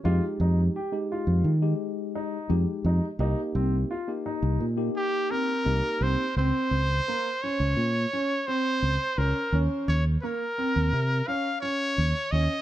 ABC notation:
X:1
M:9/8
L:1/16
Q:3/8=57
K:Bbdor
V:1 name="Trumpet"
z16 z2 | z8 z2 G2 B4 c2 | c6 d6 c4 B2 | z2 d2 B6 f2 d4 e2 |]
V:2 name="Tine electric piano"
[A,EG]4 z [A,EG]3 z [A,EG]4 z [A,EG]3 z | [B,EG]4 z [B,EG]3 z [B,EG]4 z [B,EG]3 z | z16 z2 | z16 z2 |]
V:3 name="Grand piano"
F2 E2 G2 F4 z2 E4 E2 | E2 C2 F2 E4 z2 C4 C2 | C4 B,2 D4 D2 C4 D2 | D4 B,2 C4 D2 D4 D2 |]
V:4 name="Fingered electric bass" clef=bass
F,, z F,,2 z3 F,, E,2 z4 F,, z F,, z | C,, z C,,2 z3 C,, B,,2 z4 C,, z C,, z | D,, z D,,2 z3 D,, B,,2 z4 D,, z D,, z | E,, z E,,2 z3 E,, C,2 z4 E,, z E,, z |]